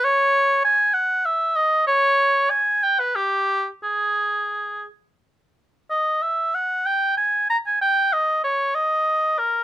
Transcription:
\new Staff \with { instrumentName = "Oboe" } { \time 6/8 \key gis \minor \tempo 4. = 63 cis''4 gis''8 fis''8 e''8 dis''8 | cis''4 gis''8 g''16 b'16 g'4 | gis'4. r4. | dis''8 e''8 fis''8 g''8 gis''8 ais''16 gis''16 |
g''8 dis''8 cis''8 dis''4 ais'8 | }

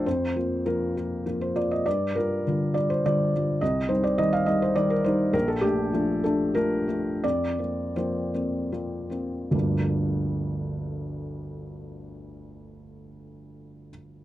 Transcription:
<<
  \new Staff \with { instrumentName = "Felt piano" } { \time 3/4 \key g \minor \tempo 4 = 97 c''4 bes'4 r16 c''16 d''16 ees''16 | d''8 bes'4 d''16 c''16 d''4 | ees''8 c''16 d''16 ees''16 f''16 ees''16 c''16 d''16 bes'16 c''8 | bes'16 a'16 g'4 a'8 bes'4 |
d''4 c''4 r4 | <g,, d, f g bes d'>2.~ | <g,, d, f g bes d'>2. | }
  \new Staff \with { instrumentName = "Felt piano" } { \time 3/4 \key g \minor f,8 <bes f'>8 <f bes f'>8 <bes f'>8 <f bes f'>8 <bes f'>8 | g,8 <g f'>8 <d g f'>8 <g f'>8 <d g f'>8 <g f'>8 | c,8 <g ees'>8 <ees g ees'>8 <g ees'>8 <ees g ees'>8 <g ees'>8 | bes,,8 <a d'>8 <f a d'>8 <a d'>8 <f a d'>8 <a d'>8 |
f,8 <bes c'>8 <f bes c'>8 <bes c'>8 <f bes c'>8 <bes c'>8 | r2. | r2. | }
>>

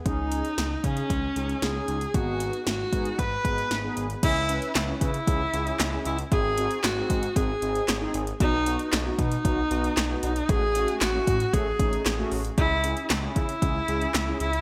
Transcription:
<<
  \new Staff \with { instrumentName = "Viola" } { \time 4/4 \key cis \minor \tempo 4 = 115 dis'4. cis'4. gis'4 | fis'4 fis'4 b'4. r8 | e'4 r8 e'2 e'8 | gis'4 fis'4 gis'4. r8 |
dis'4 r8 dis'2 dis'8 | gis'4 fis'4 gis'4. r8 | e'4 r8 e'2 e'8 | }
  \new Staff \with { instrumentName = "Analog polysynth" } { \time 4/4 \key cis \minor <cis' dis' gis'>8. r8. <cis' dis' gis'>8 r8 <cis' dis' gis'>8 r16 <cis' dis' gis'>8 r16 | <b dis' gis'>8. r8. <b dis' gis'>8 r8 <b dis' gis'>8 r16 <b dis' gis'>8 r16 | <cis' e' gis'>16 r16 <cis' e' b'>8 r16 <cis' e' b'>8 r16 <cis' e' gis'>16 r16 <cis' e' gis'>8 r16 <cis' e' gis'>8 r16 | <bis dis' gis'>16 r16 <bis dis' fis'>8 r16 <bis dis' gis'>8 r16 <bis dis' gis'>16 r16 <bis dis' gis'>8 r16 <bis dis' gis'>8 r16 |
<b dis' fis'>16 r16 <b dis' fis'>8 r16 <b dis' fis'>8 r16 <b dis' fis'>16 r16 <b dis' fis'>8 r16 <b dis' fis'>8 r16 | <a cis' fis'>16 r16 <a cis' fis'>8 r16 <a cis' fis'>8 r16 <a cis' a'>16 r16 <a cis' dis'>8 r16 <a cis' fis'>8 r16 | <cis' e' gis'>16 r16 <cis' e' gis'>8 r16 <cis' e' gis'>8 r16 <cis' e' gis'>16 r16 <cis' e' gis'>8 r16 <cis' e' gis'>8 r16 | }
  \new Staff \with { instrumentName = "Analog synth bass" } { \clef bass \time 4/4 \key cis \minor cis,4 cis,8 cis8 cis,8 cis,8 cis,8 cis,8 | gis,,4 gis,,8 gis,8 gis,,8 gis,,8 gis,,8 gis,,8 | cis,4 cis,8 cis8 cis,8 cis,8 cis,8 cis,8 | gis,,4 gis,,8 gis,8 gis,,8 gis,,8 gis,,8 gis,,8 |
b,,4 b,,8 b,8 b,,8 b,,8 b,,8 b,,8 | a,,4 a,,8 a,8 a,,8 a,,8 a,,8 a,,8 | cis,4 cis,8 cis8 cis,8 cis,8 cis,8 cis,8 | }
  \new DrumStaff \with { instrumentName = "Drums" } \drummode { \time 4/4 <hh bd>8 hh16 hh16 <hh sn>8 <hh bd>16 hh16 <hh bd>8 hh16 hh16 <hh sn>8 hh16 hh16 | <hh bd>8 hh16 hh16 <hh sn>8 <hh bd>16 hh16 <hh bd>8 <hh bd>16 hh16 <hh sn>8 hh16 hh16 | <cymc hh bd>8 hh16 hh16 <hc hh sn>8 <hh bd>16 hh16 <hh bd>8 hh16 hh16 <hc hh sn>8 hh16 hh16 | <hh bd>8 hh16 hh16 <hc hh sn>8 <hh bd>16 hh16 <hh bd>8 hh16 hh16 <hc hh sn>8 hh16 hh16 |
<hh bd>8 hh16 hh16 <hc hh sn>8 <hh bd>16 hh16 <hh bd>8 hh16 hh16 <hc hh sn>8 hh16 hh16 | <hh bd>8 hh16 hh16 <hc hh sn>8 <hh bd>16 hh16 <hh bd>8 <hh bd>16 hh16 <hc hh sn>8 hho16 hh16 | <hh bd>8 hh16 hh16 <hc hh sn>8 <hh bd>16 hh16 <hh bd>8 hh16 hh16 <hc hh sn>8 hh16 hh16 | }
>>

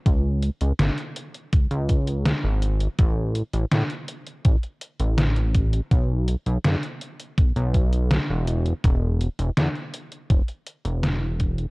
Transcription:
<<
  \new Staff \with { instrumentName = "Analog synth bass" } { \clef bass \time 4/4 \key b \mixolydian \tempo 4 = 82 cis,8 r16 cis,16 gis,,16 r8. cis,16 cis,8. r16 gis,,8 r16 | a,,8 r16 a,,16 a,16 r8. a,,16 r8 a,,4 r16 | b,,8 r16 b,,16 fis,,16 r8. b,,16 b,,8. r16 e,,8 r16 | e,,8 r16 e,,16 e,16 r8. e,,16 r8 e,,4 r16 | }
  \new DrumStaff \with { instrumentName = "Drums" } \drummode { \time 4/4 <hh bd>8 hh16 hh16 <hh sn>16 hh16 hh16 hh16 <hh bd>16 hh16 <hh bd>16 hh16 <hh sn>8 hh16 hh16 | <hh bd>8 hh16 hh16 <hh sn>16 hh16 hh16 hh16 <hh bd>16 hh16 hh16 hh16 <hh sn>16 hh16 <hh bd>16 hh16 | <hh bd>8 hh16 hh16 <hh sn>16 hh16 hh16 hh16 <hh bd>16 hh16 <hh bd>16 hh16 <hh sn>8 hh16 hh16 | <hh bd>8 hh16 hh16 <hh sn>16 hh16 hh16 hh16 <hh bd>16 hh16 hh16 hh16 <hh sn>8 <hh bd>16 hh16 | }
>>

